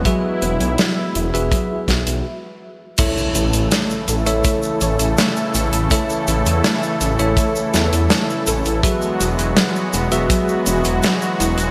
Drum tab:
CC |----------------|x---------------|----------------|----------------|
HH |x-xxx-xxx-xx----|x-xxx-xxx-xxx-xx|x-xxx-xxx-xxx-xx|x-xxx-xxx-xxx-xx|
SH |----------------|xxxxxxxxxxxxxxxx|xxxxxxxxxxxxxxxx|xxxxxxxxxxxxxxxx|
SD |----o-----o-----|----o-------o---|----o-----o-o---|----o-------o---|
BD |o-------o-o-----|o-------o-------|o-------o-------|o-------o-------|